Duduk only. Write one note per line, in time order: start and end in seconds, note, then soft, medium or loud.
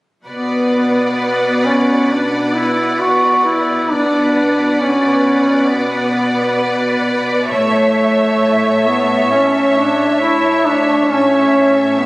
0.27 1.67 B3 soft
1.66 2.13 C#4 soft
2.11 2.57 D4 soft
2.56 3.02 E4 soft
3.01 3.44 F#4 soft
3.45 3.93 E4 soft
3.92 4.82 D4 soft
4.81 5.72 C#4 soft
5.70 7.05 B3 soft
7.50 8.88 A3 soft
8.87 9.33 B3 soft
9.31 9.76 C#4 soft
9.77 10.20 D4 soft
10.21 10.68 E4 soft
10.66 11.13 D4 medium
11.11 12.00 C#4 medium
11.98 12.06 B3 medium